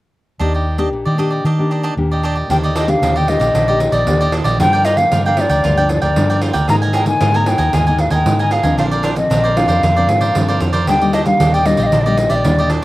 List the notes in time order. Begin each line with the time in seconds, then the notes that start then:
0.39 D#2 D#3 A#3 D4 G4 D5 D#5
0.54 G4 D5 D#5
0.78 A#3 D4 G4 D5 D#5
0.93 A#1 A#2
1.05 D#3 G4 D5 D#5
1.18 A#3 D4 G4 D5 D#5
1.31 G4 D5 D#5
1.45 D#3 D4 G4 D5 D#5
1.58 A#3 D4 G4
1.71 D4 G4 D5 D#5
1.83 D4 G4 D5 D#5
1.97 D#2 A#2 A#3 D4 G4
2.11 G4 D5 D#5
2.23 D4 G4 D5 D#5
2.35 G4 D5 D#5
2.49 D#2 D#3 A#3 D4 G4 D5 D#5 G5, pandeiro
2.63 G4 D5 D#5, pandeiro
2.75 D4 G4 D5 D#5, pandeiro
2.88 A#3 D4 G4 F5, muted cavaquinho stroke, pandeiro
3.02 D#2 A#2 D4 G4 D5 D#5, pandeiro
3.16 G4 D5 D#5 G5, pandeiro
3.28 A#3 D4 G4 D#5, pandeiro
3.40 A#1 G4 D5 D#5, pandeiro
3.54 A#1 D#3 D4 G4 D5 D#5, pandeiro
3.68 A#3 D4 G4 D5 D#5, pandeiro
3.80 muted cavaquinho stroke, pandeiro
3.92 A#1 G4 D5 D#5, pandeiro
4.06 D#2 A#2 A#3 D4 G4, pandeiro
4.21 G4 D5 D#5, pandeiro
4.32 D4 G4 D5 D#5, pandeiro
4.44 A#1 G4 D5 D#5, pandeiro
4.59 G2 F3 A#3 D4 F4 A#4 D5 G5, pandeiro
4.73 A#4 D5 G5, pandeiro
4.85 F4 A#4 D5 D#5 G5, pandeiro
4.97 F3 A#3 D4 F5, muted cavaquinho stroke, pandeiro
5.12 G2 D3 F4 A#4 D5 G5, pandeiro
5.25 F3 A#3 D4 A#4 D5 F5 G5, pandeiro
5.37 F3 A#3 D4 E5, pandeiro
5.41 D5
5.50 D2 A#4 D5 G5, pandeiro
5.64 D2 G2 F4 A#4 D5 G5, pandeiro
5.77 F3 A#3 D4 A#4 D5 G5, pandeiro
5.89 muted cavaquinho stroke, pandeiro
6.02 D2 A#4 D5 G5, pandeiro
6.16 G2 D3 F3 A#3 D4, pandeiro
6.30 A#4 D5 G5, pandeiro
6.41 F4 A#4 D5 G5, pandeiro
6.53 D2 A#4 D5 G5, pandeiro
6.68 G#2 D#3 A#3 D#4 G#4 A#4 D#5 G#5 A#5, pandeiro
6.82 A#4 D#5 G#5, pandeiro
6.93 G#4 A#4 D#5 G5 G#5, pandeiro
7.06 D#3 A#3 D#4 G#5, muted cavaquinho stroke, pandeiro
7.20 G#2 D#3 G#4 A#4 D#5 G#5, pandeiro
7.34 D#3 A#3 D#4 A#4 D#5 G#5 A#5, pandeiro
7.46 D#3 A#3 D#4 G5, pandeiro
7.58 D#2 A#4 D#5 G#5, pandeiro
7.73 D#2 G#2 G#4 A#4 D#5 G#5, pandeiro
7.87 D#3 A#3 D#4 A#4 D#5 G#5, pandeiro
7.99 F5, muted cavaquinho stroke, pandeiro
8.10 D#2 A#4 D#5 G5 G#5, pandeiro
8.25 G#2 D#3 A#3 D#4, pandeiro
8.39 A#4 D#5 G#5, pandeiro
8.51 G#4 A#4 D#5 F5 G#5, pandeiro
8.63 D#2 F3 C4 D4 A#4 D#5 G#5, pandeiro
8.78 A#1 A#2 D4 A#4 C5 D5 F5, pandeiro
8.91 A#4 C5 D5, pandeiro
9.03 D4 A#4 C5 D5, pandeiro
9.16 F3 C4 D#5, muted cavaquinho stroke, pandeiro
9.30 A#1 F3 D4 A#4 C5 D5, pandeiro
9.44 A#4 C5 D5, pandeiro
9.56 F3 C4 D4 F5, pandeiro
9.68 F2 A#4 C5 D5, pandeiro
9.83 F2 A#2 D4 A#4 C5 D5, pandeiro
9.96 F3 C4 D4 A#4 C5 D5, pandeiro
10.08 G#2, muted cavaquinho stroke, pandeiro
10.21 A#4 C5 D5, pandeiro
10.35 G2 F3 C4 D4, pandeiro
10.48 A#4 C5 D5, pandeiro
10.60 F2 D4 A#4 C5 D5, pandeiro
10.73 A#4 C5 D5, pandeiro
10.87 D#2 D#3 G3 A#3 D4 G4 D5 D#5 G5, pandeiro
11.01 G3 A#3 D4 G4 D5 D#5, pandeiro
11.13 D4 G4 D5 D#5, pandeiro
11.26 G3 A#3 D4 F5, muted cavaquinho stroke, pandeiro
11.40 D#2 A#2 D4 G4 D5 D#5, pandeiro
11.54 G4 D5 D#5 G5, pandeiro
11.65 G3 A#3 D4 D#5, pandeiro
11.77 A#1 G4 D5 D#5, pandeiro
11.83 D#5 F5
11.92 A#1 D#3 D4 G4 D5 D#5, pandeiro
12.00 D5 D#5
12.06 G3 A#3 D4 G4 D5 D#5, pandeiro
12.18 muted cavaquinho stroke, pandeiro
12.29 A#1 G4 D5 D#5 E5, pandeiro
12.35 D5
12.44 D#2 A#2 G3 A#3 D4, pandeiro
12.58 G4 D5 D#5, pandeiro
12.70 D4 G4 D5 D#5, pandeiro